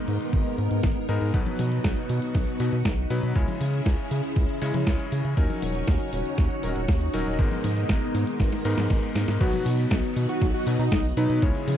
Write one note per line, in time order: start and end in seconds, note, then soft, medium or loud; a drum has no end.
0.00 0.55 G#2 medium
0.00 0.55 G#3 medium
0.00 1.32 G#3 medium
0.00 0.55 B3 medium
0.00 1.32 B3 medium
0.00 0.55 D#4 medium
0.00 3.32 D#4 medium
0.00 0.55 A#4 medium
0.00 1.32 A#4 medium
0.08 0.18 G#2 loud
0.08 closed hi-hat medium
0.21 closed hi-hat soft
0.33 0.43 G#1 medium
0.33 kick loud
0.33 closed hi-hat medium
0.46 closed hi-hat soft
0.58 0.68 G#2 loud
0.58 closed hi-hat medium
0.71 0.81 G#2 loud
0.71 closed hi-hat soft
0.83 0.94 G#1 medium
0.83 kick loud
0.83 snare loud
0.83 closed hi-hat medium
0.96 closed hi-hat soft
1.09 1.19 G#2 loud
1.09 1.31 G#3 medium
1.09 1.31 B3 medium
1.09 1.31 D#4 medium
1.09 1.31 A#4 loud
1.09 closed hi-hat soft
1.21 1.32 G#2 medium
1.21 closed hi-hat soft
1.34 1.44 B1 loud
1.34 2.57 B2 medium
1.34 2.57 F#3 medium
1.34 3.34 B3 medium
1.34 2.57 B3 medium
1.34 2.57 D#4 medium
1.34 3.34 F#4 medium
1.34 2.57 B4 medium
1.34 kick loud
1.34 closed hi-hat medium
1.46 closed hi-hat soft
1.46 high tom medium
1.59 1.80 B2 medium
1.59 open hi-hat medium
1.59 high tom medium
1.72 closed hi-hat soft
1.84 1.95 B1 loud
1.84 kick loud
1.84 snare loud
1.84 closed hi-hat medium
1.97 closed hi-hat soft
2.09 2.20 B2 loud
2.09 open hi-hat loud
2.22 closed hi-hat soft
2.35 2.45 B1 medium
2.35 kick loud
2.35 snare medium
2.35 closed hi-hat medium
2.47 closed hi-hat soft
2.60 2.70 B2 loud
2.60 2.75 B2 medium
2.60 2.75 F#3 medium
2.60 2.75 B3 medium
2.60 2.75 D#4 medium
2.60 2.75 B4 medium
2.60 open hi-hat loud
2.73 2.83 B2 loud
2.73 closed hi-hat soft
2.85 3.06 B1 loud
2.85 kick loud
2.85 snare loud
2.85 closed hi-hat medium
2.98 closed hi-hat soft
3.10 3.20 B2 loud
3.10 3.33 F#3 medium
3.10 3.33 B3 medium
3.10 3.33 D#4 medium
3.10 3.33 B4 loud
3.10 open hi-hat medium
3.23 3.33 B2 medium
3.23 closed hi-hat soft
3.36 3.46 C#2 loud
3.36 4.59 C#3 medium
3.36 4.59 G#3 medium
3.36 5.35 C#4 medium
3.36 4.59 C#4 medium
3.36 5.35 E4 medium
3.36 4.59 E4 medium
3.36 5.35 G#4 medium
3.36 4.59 C#5 medium
3.36 kick loud
3.36 closed hi-hat medium
3.48 closed hi-hat soft
3.48 high tom medium
3.61 3.81 C#3 medium
3.61 open hi-hat loud
3.73 closed hi-hat soft
3.86 3.96 C#2 loud
3.86 kick loud
3.86 snare loud
3.86 closed hi-hat medium
3.99 closed hi-hat soft
4.11 4.21 C#3 loud
4.11 open hi-hat loud
4.24 closed hi-hat soft
4.36 4.47 C#2 medium
4.36 kick loud
4.36 closed hi-hat medium
4.49 closed hi-hat soft
4.62 5.34 C#3 medium
4.62 4.72 C#3 loud
4.62 5.34 G#3 medium
4.62 5.34 C#4 medium
4.62 5.34 E4 medium
4.62 5.34 C#5 loud
4.62 open hi-hat loud
4.74 4.84 C#3 loud
4.74 closed hi-hat soft
4.74 high tom medium
4.87 4.97 C#2 medium
4.87 kick loud
4.87 snare loud
4.87 closed hi-hat medium
5.00 closed hi-hat soft
5.12 5.22 C#3 loud
5.12 open hi-hat loud
5.25 5.35 C#3 medium
5.25 closed hi-hat soft
5.37 5.47 D#2 loud
5.37 6.60 F#3 medium
5.37 7.37 C#4 medium
5.37 6.60 C#4 medium
5.37 9.37 D#4 medium
5.37 6.60 D#4 medium
5.37 7.37 F#4 medium
5.37 6.60 A#4 medium
5.37 7.37 C#5 medium
5.37 kick loud
5.37 closed hi-hat medium
5.50 closed hi-hat soft
5.50 high tom medium
5.62 5.83 D#1 medium
5.62 open hi-hat loud
5.62 high tom medium
5.75 closed hi-hat soft
5.88 5.98 D#2 loud
5.88 kick loud
5.88 snare loud
5.88 closed hi-hat medium
6.00 closed hi-hat soft
6.13 6.23 D#1 loud
6.13 open hi-hat loud
6.25 closed hi-hat soft
6.38 6.48 D#2 medium
6.38 kick loud
6.38 snare medium
6.38 closed hi-hat medium
6.51 closed hi-hat soft
6.63 6.74 D#1 loud
6.63 6.78 F#3 medium
6.63 6.78 C#4 medium
6.63 6.78 D#4 medium
6.63 6.79 A#4 medium
6.63 open hi-hat loud
6.76 6.86 D#1 loud
6.76 closed hi-hat soft
6.88 7.09 D#2 loud
6.88 kick loud
6.88 snare loud
6.88 closed hi-hat medium
7.01 closed hi-hat soft
7.14 7.24 D#1 loud
7.14 7.36 F#3 medium
7.14 7.36 C#4 medium
7.14 7.36 D#4 medium
7.14 7.36 A#4 loud
7.14 open hi-hat loud
7.26 7.37 D#1 medium
7.26 closed hi-hat soft
7.39 7.49 G#1 loud
7.39 8.62 G#2 medium
7.39 9.39 G#3 medium
7.39 8.62 G#3 medium
7.39 9.38 B3 medium
7.39 8.62 B3 medium
7.39 8.62 D#4 medium
7.39 9.38 A#4 medium
7.39 8.62 A#4 medium
7.39 kick loud
7.39 closed hi-hat medium
7.51 closed hi-hat soft
7.51 high tom medium
7.64 7.85 G#2 medium
7.64 open hi-hat loud
7.64 high tom medium
7.77 closed hi-hat soft
7.89 8.00 G#1 loud
7.89 kick loud
7.89 snare loud
7.89 closed hi-hat medium
8.02 closed hi-hat soft
8.15 8.25 G#2 loud
8.15 snare medium
8.15 open hi-hat loud
8.27 closed hi-hat soft
8.40 8.50 G#1 loud
8.40 kick loud
8.40 snare medium
8.40 closed hi-hat medium
8.52 snare medium
8.52 closed hi-hat soft
8.65 8.75 G#2 loud
8.65 9.38 G#2 medium
8.65 9.38 G#3 medium
8.65 9.38 B3 medium
8.65 9.38 D#4 medium
8.65 9.38 A#4 loud
8.65 open hi-hat loud
8.78 8.88 G#2 loud
8.78 snare medium
8.78 closed hi-hat soft
8.78 high tom medium
8.90 9.00 G#1 medium
8.90 kick loud
8.90 snare medium
8.90 closed hi-hat medium
9.03 closed hi-hat soft
9.15 9.26 G#2 loud
9.15 snare medium
9.15 open hi-hat loud
9.28 9.38 G#2 medium
9.28 snare medium
9.28 closed hi-hat soft
9.40 9.51 B1 loud
9.40 10.64 B2 medium
9.40 10.64 F#3 medium
9.40 10.64 B3 medium
9.40 11.40 B3 medium
9.40 11.40 D#4 medium
9.40 10.64 D#4 medium
9.40 9.76 F#4 loud
9.40 11.40 F#4 medium
9.40 10.64 B4 medium
9.40 kick loud
9.40 closed hi-hat loud
9.40 crash loud
9.40 cabasa soft
9.53 closed hi-hat soft
9.53 high tom medium
9.66 9.86 B2 medium
9.66 open hi-hat loud
9.66 cabasa medium
9.79 closed hi-hat soft
9.79 cabasa soft
9.91 10.01 B1 loud
9.91 kick loud
9.91 snare loud
9.91 closed hi-hat loud
9.91 cabasa soft
10.04 closed hi-hat soft
10.16 10.27 B2 loud
10.16 open hi-hat loud
10.16 cabasa medium
10.29 10.47 F#4 medium
10.29 closed hi-hat soft
10.29 cabasa soft
10.42 10.52 B1 loud
10.42 kick loud
10.42 snare medium
10.42 closed hi-hat loud
10.42 cabasa soft
10.54 10.72 F#4 loud
10.54 closed hi-hat soft
10.67 10.77 B2 loud
10.67 10.82 B2 medium
10.67 10.82 F#3 medium
10.67 10.82 B3 medium
10.67 10.82 D#4 medium
10.67 10.82 B4 medium
10.67 open hi-hat loud
10.67 cabasa medium
10.79 10.89 B2 loud
10.79 11.06 D#4 loud
10.79 closed hi-hat soft
10.79 cabasa soft
10.92 11.12 B1 loud
10.92 kick loud
10.92 snare loud
10.92 closed hi-hat medium
10.92 cabasa soft
11.05 closed hi-hat soft
11.17 11.27 B2 loud
11.17 11.39 F#3 medium
11.17 11.39 B3 medium
11.17 11.39 D#4 medium
11.17 11.44 D#4 loud
11.17 11.39 B4 loud
11.17 open hi-hat loud
11.17 cabasa medium
11.30 11.40 B2 medium
11.30 closed hi-hat soft
11.30 cabasa soft
11.42 11.53 C#2 loud
11.42 11.77 C#3 medium
11.42 11.77 G#3 medium
11.42 11.77 C#4 medium
11.42 11.77 E4 medium
11.42 11.77 G#4 medium
11.42 11.77 C#5 medium
11.42 kick loud
11.42 closed hi-hat loud
11.42 cabasa soft
11.55 closed hi-hat soft
11.68 11.77 C#3 medium
11.68 open hi-hat loud
11.68 high tom medium
11.68 cabasa medium